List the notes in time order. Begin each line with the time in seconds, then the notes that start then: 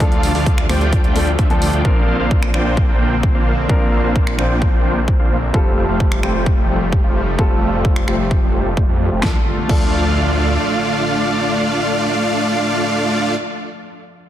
Already playing: D3 F4 A4 C5
0.00 D2 F3 G3 A3 D4 F4 A4 D5 F5, kick, closed hi-hat
0.12 closed hi-hat
0.23 open hi-hat
0.35 D2 A3 D4 F4 D5 F5, open hi-hat
0.46 kick, closed hi-hat
0.58 finger snap, closed hi-hat
0.69 D2 F3 A3 D4 F4 C5 D5 G5, finger snap, open hi-hat
0.81 closed hi-hat
0.93 kick, closed hi-hat
1.04 D2 A3 D4 F4 D5 G5, closed hi-hat
1.15 F3 A3 D4 A4, open hi-hat
1.27 closed hi-hat
1.39 D2 A3 D4 F4 D5 E5, kick, closed hi-hat
1.50 D2 F3 A3 D4 F4 A4 D5 G5, closed hi-hat
1.62 open hi-hat
1.73 D2 A3 D4 F4 D5 G5, closed hi-hat
1.84 A#1 F3 A#3 C4 D4 F4 A#4 C5 F5, kick
2.19 A#1 A#3 D4 F4 C5 F5
2.31 kick
2.43 finger snap
2.53 A#1 F3 A#3 C4 D4 F4 C5 G5, finger snap
2.77 kick
2.89 A#1 A#3 D4 F4 C5 G5
3.23 kick
3.35 A#1 A#3 D4 F4 C5 F5
3.68 A#1 F3 A#3 C4 D4 F4 A#4 C5 F5, kick
4.04 A#1 A#3 D4 F4 C5 F5
4.16 kick
4.27 finger snap
4.37 A#1 F3 A#3 C4 D4 F4 C5 G5, finger snap
4.62 kick
4.73 A#1 A#3 D4 F4 C5 G5
5.08 kick
5.19 A#1 A#3 D4 F4 C5 F5
5.53 F1 F3 G3 A3 C4 F4 G4 A4 C5 F5, kick
5.89 F1 A3 F4 G4 C5 F5
6.00 kick
6.12 finger snap
6.22 F1 G3 A3 C4 F4 G4 C5 G5, finger snap
6.46 kick
6.58 F1 A3 F4 G4 C5 G5
6.93 kick
7.04 F1 A3 F4 G4 C5 F5
7.37 F1 G3 A3 C4 F4 G4 A4 C5 F5, kick
7.73 F1 A3 F4 G4 C5 F5
7.85 kick
7.96 finger snap
8.07 F1 G3 A3 C4 F4 G4 C5 G5, finger snap
8.31 kick
8.42 F1 A3 F4 G4 C5 G5
8.77 F1 A3 F4 G4 C5 D5, kick
8.89 F2 A3 F4 G4 C5 G5
9.12 F1 A3 F4 G4 C5 G5
9.21 D2 D3 F3 A3 D4 F4 A4 D5 F5, kick, snare, impact
9.68 D2 F3 A3 D4 F4 A4 D5 F5, kick, crash